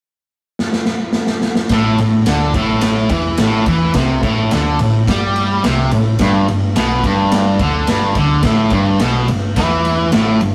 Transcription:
0.59 snare
0.73 snare
0.86 snare
1.13 snare
1.27 snare
1.42 snare
1.55 snare
1.69 A1 A2, kick, snare, ride
1.98 A1 A2, ride
2.26 D2 D3, snare, ride
2.53 A1 A2, kick, ride
2.81 snare, ride
3.09 E2 E3, kick, ride
3.37 A1 A2, snare, ride
3.66 E2 E3, kick, ride
3.94 C2 C3, kick, snare, ride
4.23 A1 A2, kick, ride
4.51 D2 D3, snare, ride
4.79 A1 A2, ride
5.07 G2 G3, kick, snare, ride
5.36 ride
5.64 C2 C3, snare, ride
5.91 A1 A2, ride
6.19 G1 G2, kick, snare, ride
6.48 G1 G2, ride
6.76 B1 B2, snare, ride
7.03 G1 G2, kick, ride
7.31 snare, ride
7.59 D2 D3, kick, ride
7.87 G1 G2, snare, ride
8.15 D2 D3, kick, ride
8.43 A1 A2, kick, snare, ride
8.70 G1 G2, kick, ride
8.99 B1 B2, snare, ride
9.28 G1 G2, ride
9.56 E2 E3, kick, snare, ride
9.85 ride
10.12 A1 A2, snare, ride
10.41 G1 G2, ride

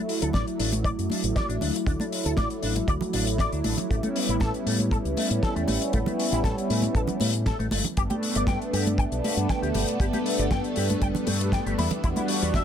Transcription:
Already playing: F#3 A3 E4
0.09 open hi-hat
0.21 D2 A4, closed hi-hat
0.33 A1 D5, kick, snare, closed hi-hat, high conga
0.48 closed hi-hat
0.59 A1 D4, open hi-hat
0.72 closed hi-hat, high conga
0.84 D5, kick, closed hi-hat
0.98 F#2, closed hi-hat
1.09 F#3 A3 D4 E4, open hi-hat, high conga
1.24 A1, closed hi-hat
1.35 D5, kick, snare, closed hi-hat
1.49 A1 D4, closed hi-hat
1.61 D2 D4, open hi-hat, high conga
1.76 closed hi-hat
1.85 D2 F#3 A3 D4 E4, kick, closed hi-hat
2.00 D4, closed hi-hat, high conga
2.12 open hi-hat
2.25 D2 A4, closed hi-hat
2.37 A1 D5, kick, snare, closed hi-hat, high conga
2.50 closed hi-hat
2.62 A1 D4, open hi-hat
2.76 closed hi-hat, high conga
2.88 D2 D5, kick, closed hi-hat
3.01 muted fingered electric bass stroke, closed hi-hat, low conga
3.13 A1 F#3 A3 D4 E4, open hi-hat, high conga
3.27 closed hi-hat
3.38 D5, kick, snare, closed hi-hat
3.52 D2 D4, closed hi-hat
3.64 A1 D4, open hi-hat, high conga
3.78 closed hi-hat, low conga
3.89 A1 G3 A3 B3 C#4 E4, kick, closed hi-hat
4.03 A3, closed hi-hat, high conga
4.16 open hi-hat
4.28 A1 E4, closed hi-hat
4.40 A2 A4, kick, snare, closed hi-hat, high conga
4.54 closed hi-hat
4.66 A2 A3, open hi-hat
4.79 closed hi-hat, high conga
4.91 A4, kick, closed hi-hat
5.05 C#2, closed hi-hat
5.16 G3 A3 B3 C#4 E4, open hi-hat, high conga
5.30 A2, closed hi-hat
5.42 A4, kick, snare, closed hi-hat
5.56 E2 A3, closed hi-hat
5.68 A1 A3, open hi-hat, high conga
5.82 closed hi-hat
5.92 A1 G3 A3 B3 C#4 E4, kick, closed hi-hat
6.06 A3, closed hi-hat, high conga, low conga
6.19 open hi-hat
6.32 A1 E4, snare, closed hi-hat
6.44 A2 A4, kick, snare, closed hi-hat, high conga
6.58 closed hi-hat
6.70 A2 A3, open hi-hat
6.82 closed hi-hat, high conga
6.95 A1 A4, kick, closed hi-hat
7.07 closed hi-hat, low conga
7.20 A2 A3, open hi-hat, high conga
7.33 closed hi-hat
7.46 A4, kick, snare, closed hi-hat
7.59 A1 A3, closed hi-hat
7.71 G1 A3, open hi-hat, high conga
7.84 closed hi-hat, low conga
7.96 G1 G3 A3 B3 D4 G4 A4, kick, closed hi-hat
8.10 G4, closed hi-hat, high conga
8.23 open hi-hat
8.35 G1 D5, closed hi-hat
8.47 G2 G5, kick, snare, closed hi-hat, high conga
8.62 closed hi-hat
8.73 G2 G4, open hi-hat
8.87 closed hi-hat, high conga
8.98 G5, kick, closed hi-hat
9.11 B1, closed hi-hat
9.23 A3 B3 D4 G4, open hi-hat, high conga
9.37 G2, closed hi-hat
9.49 G5, kick, snare, closed hi-hat
9.62 D2 G4, closed hi-hat
9.74 G1 G4, open hi-hat, high conga
9.88 closed hi-hat
9.99 G1 A3 B3 D4 G4, kick, closed hi-hat
10.13 G4, closed hi-hat, high conga
10.26 open hi-hat
10.39 G1 D5, closed hi-hat
10.51 G2 G5, kick, snare, closed hi-hat, high conga
10.64 closed hi-hat
10.76 G2 G4, open hi-hat
10.90 closed hi-hat, high conga
11.02 G1 G5, kick, closed hi-hat
11.15 closed hi-hat, low conga
11.26 G2 A3 B3 D4 G4, open hi-hat, high conga
11.41 closed hi-hat
11.52 G5, kick, snare, closed hi-hat
11.66 G1 G4, closed hi-hat
11.78 E2 E4 D5, open hi-hat, high conga
11.91 closed hi-hat, low conga
12.03 E2 G3 B3 D4 E4 F#4, kick, closed hi-hat
12.16 E4, closed hi-hat, high conga
12.28 open hi-hat
12.42 E2 B4, closed hi-hat
12.54 E1 E5, kick, snare, closed hi-hat, high conga

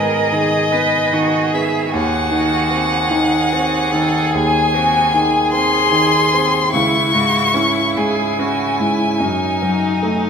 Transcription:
Already playing: G#2 D#3 B3 G#4 A#4 D#5
0.32 D#3 G#4
0.72 B3 B4
1.13 D#3 F#4
1.53 B3 G#4 E5
1.88 F#4 G#4 G#5
1.93 D#2 F#5
2.31 D#3
2.71 C4
3.11 D#3 D#4
3.52 C4 F#4
3.93 D#3 A4
4.32 D#2 G#4 G#5
4.74 C4 F#4
5.13 D#3 G#4
5.52 C4 C6
5.91 D#3
6.33 C4
6.72 C#2 E4 C#6
7.13 G#2 F#4
7.54 C#4 E4
7.97 G#2 G#4 G#5
8.39 C#4 F#4
8.80 G#2 E4
9.18 F#2 D#4
9.62 F#3
10.02 A3

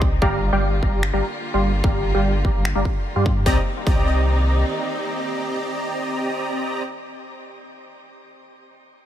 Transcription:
Already playing: C2 A#3 C4 D4 D#4
0.02 kick
0.22 G1 D3 G3 A#3 F4 G4 D5 F5 A#5, kick
0.52 G1 G3 G4 D5 F5 G5
0.83 G1 G3 G4 D5 F5 A#5, kick
1.03 finger snap
1.13 G1 G3 G4 D5 F5 A#5
1.54 G1 G3 G4 D5 F5 C6
1.84 G1 G3 G4 D5 F5 A#5, kick
2.14 G1 G3 G4 D5 F5 G5
2.45 G1 G3 G4 D5 F5 A#5, kick
2.65 finger snap
2.75 G1 G3 G4 D5 F5 A#5
2.85 kick
3.16 G2 G3 G4 D5 F5 C6
3.26 kick
3.46 C2 D#3 A#3 C4 D#4 G4 D5 D#5 A#5, kick
3.87 C2 C4 G4 D5 D#5 A#5, kick

